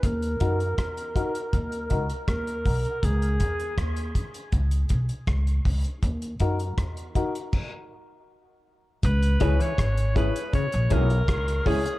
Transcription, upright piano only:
\new Staff \with { instrumentName = "Upright piano" } { \time 4/4 \key cis \dorian \tempo 4 = 80 r8 <dis' fis' ais'>16 r8. <dis' fis' ais'>16 r8. <dis' fis' ais'>16 r8. <dis' fis' ais'>16 r16 | r8 <cis' e' gis'>16 r8. <cis' e' gis'>16 r8. <cis' e' gis'>16 r8 <e' gis'>16 <cis' e' gis'>16 r16 | r8 <dis' fis' ais'>16 r8. <dis' fis' ais'>16 r2 r16 | r8 <e' gis' cis''>16 r8. <e' gis' cis''>16 r8. <e' gis' cis''>16 <gis' cis''>16 r8 <e' gis' cis''>16 <gis' cis''>16 | }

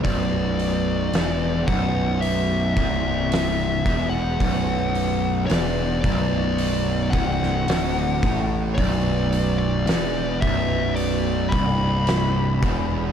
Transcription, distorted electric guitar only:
\new Staff \with { instrumentName = "Distorted electric guitar" } { \clef bass \time 4/4 \key b \minor \tempo 4 = 55 b,,4 e,8 b,,4 c,4 e,8 | b,,4 e,8 b,,4 c,8 d,8 a,8 | b,,4 e,8 b,,4 c,4 e,8 | }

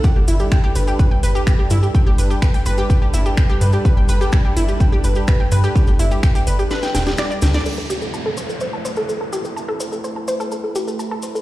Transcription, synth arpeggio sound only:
\new Staff \with { instrumentName = "Synth arpeggio sound" } { \time 4/4 \key a \minor \tempo 4 = 126 g'16 g'16 e'16 g'16 g''16 g'16 b'16 g'16 b'16 g''16 b'16 g'16 g'16 g'16 e'16 g'16 | g''16 g'16 b'16 g'16 b'16 g''16 b'16 g'16 g'16 g'16 e'16 g'16 g''16 g'16 b'16 g'16 | b'16 g''16 b'16 g'16 g'16 g'16 e'16 g'16 g''16 g'16 b'16 g'16 b'16 g''16 b'16 g'16 | g'16 g'16 e'16 g'16 g''16 g'16 b'16 g'16 b'16 g''16 g''16 g'16 d''16 d''16 g'16 d''16 |
a'16 a'16 g'16 a'16 a''16 a'16 c''16 a'16 c''16 a''16 c''16 a'16 a'16 a'16 g'16 a'16 | a''16 a'16 c''16 a'16 c''16 a''16 c''16 a'16 a'16 a'16 g'16 a'16 a''16 a'16 c''16 a'16 | }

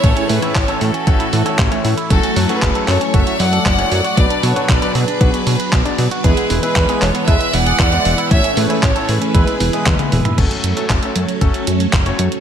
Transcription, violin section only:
\new Staff \with { instrumentName = "Violin section" } { \time 4/4 \key fis \minor \tempo 4 = 116 <a' cis''>8 <gis' b'>8 <a' cis''>8 <fis' a'>2 r8 | <fis' a'>8. <gis' b'>8. <a' cis''>8 <cis'' e''>8 <d'' fis''>4. | <b' d''>8 <a' cis''>8 <b' d''>8 <gis' b'>2 r8 | <e' gis'>8. <gis' b'>8. <a' cis''>8 <b' e''>8 <d'' fis''>4. |
<cis'' e''>8 <gis' b'>8 <a' cis''>8 <gis' b'>2 r8 | r1 | }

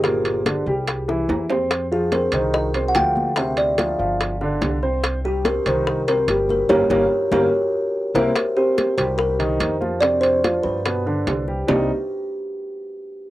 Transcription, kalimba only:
\new Staff \with { instrumentName = "Kalimba" } { \time 4/4 \key c \minor \tempo 4 = 144 g'2.~ g'8 r8 | r8 aes'8 bes'8 c''8 \tuplet 3/2 { ees''4~ ees''16 fis''16 } g''4 | e''8 d''8 f''4 r2 | r8 g'8 bes'8 c''4 bes'4 bes'8 |
<g' bes' des''>8 <g' bes' des''>8 r8 <g' bes' des''>8 r4. <bes' c'' e''>8 | r8 g'4 c''8 bes'2 | d''8 c''4 b'2 r8 | g'8 r2. r8 | }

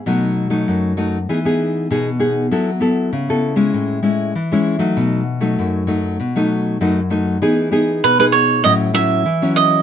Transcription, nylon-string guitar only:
\new Staff \with { instrumentName = "Nylon-string guitar" } { \time 4/4 \key e \major \tempo 4 = 98 << { <fis a dis'>8. <fis a dis'>8. <fis a dis'>16 r16 <b dis' gis'>16 <b dis' gis'>8. <b dis' gis'>16 r16 <b dis' gis'>8 | <b e' a'>16 r16 <b e' a'>8 r16 <b e' a'>8 <gis cis' e'>8. <gis cis' e'>8 r16 <gis cis' e'>8 <fis a dis'>16~ | <fis a dis'>8 r16 <fis a dis'>8. <fis a dis'>8 r16 <fis a dis'>8. <fis a dis'>16 r16 <fis a dis'>8 | <b dis' gis'>8 <b dis' gis'>8. <b dis' gis'>8. <fis cis' e'>8 <fis cis' e'>8 r16 <fis cis' e'>8. | } \\ { b,4 fis,4 e4 b,4 | fis4 cis4 a,4 e4 | b,4 fis,4 b,4 fis,4 | e4 b,4 a,4 e4 | } >> }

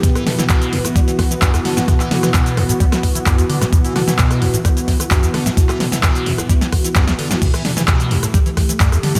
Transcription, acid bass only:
\new Staff \with { instrumentName = "Acid bass" } { \clef bass \time 4/4 \key e \minor \tempo 4 = 130 e,16 e16 d16 e16 b,8 e,16 a,16 g16 e16 r16 e16 g,16 e,16 d16 a,16 | e,16 e16 d16 e16 b,8 e,16 a,16 g16 e16 r16 e16 g,16 e,16 d16 a,16 | e,16 e16 d16 e16 b,8 e,16 a,16 g16 e16 r16 e16 g,16 e,16 d16 a,16 | e,16 e16 d16 e16 b,8 e,16 a,16 g16 e16 r16 e16 g,16 e,16 d16 a,16 |
e,16 e16 d16 e16 b,8 e,16 a,16 g16 e16 r16 e16 g,16 e,16 d16 a,16 | }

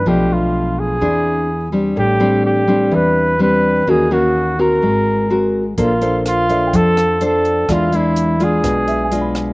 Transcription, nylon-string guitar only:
\new Staff \with { instrumentName = "Nylon-string guitar" } { \time 4/4 \key e \phrygian \tempo 4 = 126 << { <f a d'>2 <bis d' gis'>4 r8 <g bis d'>8~ | <g bis d'>8 <g c' d'>4 <g c' d'>4. <g c' d'>4 | <bes des' ges'>8 <bes des' ges'>4 <c' ges' bes'>4. <c' ges' bes'>8 r8 | <d' a' c''>8 <d' a' c''>4 <d' a' c''>4. <d' a' c''>4 |
<gis d' f'>8 <gis d'>4 <gis d' f'>4. <gis d' f'>4 | } \\ { b,2 e2 | a,2 e2 | ees2 aes2 | bes2 f2 |
e2 b,2 | } >> }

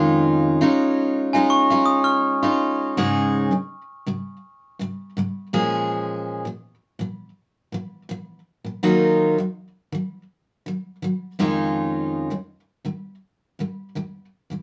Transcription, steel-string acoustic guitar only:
\new Staff \with { instrumentName = "Steel-string acoustic guitar" } { \clef bass \time 4/4 \key des \major \tempo 4 = 82 <f, ees aes des' ees' f'>8. <aes des' ees' f'>4 <aes des' ees' f'>8 <aes des' ees' f'>4 <aes des' ees' f'>8. | <aes, des aes des' ees' aes'>8. <aes, des aes>8 r16 <aes, des aes>8 r8 <aes, des aes>8 <aes, des aes>8 <bes, f aes des' aes'>8~ | <bes, f aes des' aes'>8. <bes, f>8 r16 <bes, f>8 r8 <bes, f>8 <bes, f>8 r16 <bes, f>16 | <ees ges bes ees' f'>8. <ees ges>8 r16 <ees ges>8 r8 <ees ges>8 <ees ges>8 <f, ees aes des' ees' f'>8~ |
<f, ees aes des' ees' f'>8. <f, ees aes>8 r16 <f, ees aes>8 r8 <f, ees aes>8 <f, ees aes>8 r16 <f, ees aes>16 | }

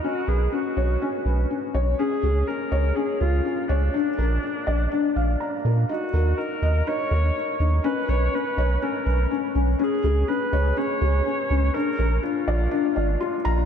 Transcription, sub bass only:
\new Staff \with { instrumentName = "Sub bass" } { \clef bass \time 4/4 \key des \mixolydian \tempo 4 = 123 r8 b,,8 r8 b,,8 r8 b,,8 r8 b,,8 | r8 des,8 r8 des,8 r8 des,8 r8 des,8 | r8 bes,,8 r8 bes,,8 r8 bes,,8 r8 bes,8 | r8 ees,8 r8 ees,8 r8 ees,8 r8 ees,8 |
r8 b,,8 r8 b,,8 r8 b,,8 r8 b,,8 | r8 des,8 r8 des,8 r8 des,8 r8 des,8 | r8 bes,,8 r8 bes,,8 r8 aes,,8 r8 bes,,8 | }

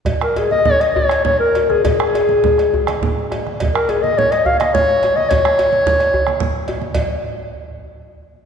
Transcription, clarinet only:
\new Staff \with { instrumentName = "Clarinet" } { \time 12/8 \key des \major \tempo 4. = 141 r8 bes'8 aes'8 ees''8 des''8 ees''8 des''4 des''8 bes'4 aes'8 | aes'1 r2 | r8 bes'8 aes'8 ees''8 des''8 ees''8 f''8 ees''8 des''4. ees''8 | des''1~ des''4 r4 |
r1. | }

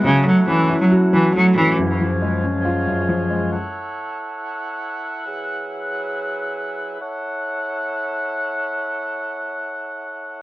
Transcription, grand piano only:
\new Staff \with { instrumentName = "Grand piano" } { \clef bass \time 4/4 \key fis \minor \tempo 4 = 138 fis8 a8 cis'8 e'8 fis'8 fis8 a8 cis'8 | fis,8 eis8 gis8 cis'8 eis'8 fis,8 eis8 gis8 | r1 | r1 |
r1 | r1 | }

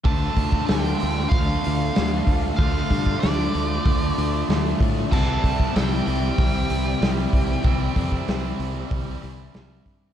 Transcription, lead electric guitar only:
\new Staff \with { instrumentName = "Lead electric guitar" } { \time 4/4 \key d \minor \tempo 4 = 95 a''4 g''4 f''2 | f''4 d''2 r4 | a''4 g''8 g''2~ g''8~ | g''2. r4 | }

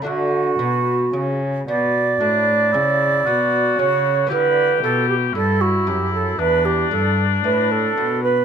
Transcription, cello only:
\new Staff \with { instrumentName = "Cello" } { \clef bass \time 4/4 \key d \major \tempo 4 = 57 d8 b,8 cis8 b,8 a,8 cis8 b,8 cis8 | d8 b,8 g,8 fis,8 e,8 g,8 a,8 b,8 | }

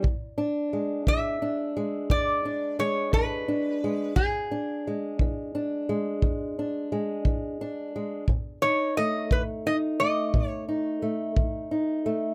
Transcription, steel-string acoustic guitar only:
\new Staff \with { instrumentName = "Steel-string acoustic guitar" } { \clef bass \time 12/8 \key e \mixolydian \tempo 4. = 58 << { r8 d'8 gis4 d'8 gis4 d'8 gis4 d'8 gis8 | r8 d'8 gis4 d'8 gis4 d'8 gis4 d'8 gis8 | r8 dis'8 a4 dis'8 a4 dis'8 a4 dis'8 a8 | } \\ { e,4 r8 e4 r8 e,4 r8 e4 r8 | e,4 r8 e4 r8 e,4 r8 e4 r8 | b,4 r8 dis4 r8 b,4 r8 dis4 r8 | } >> }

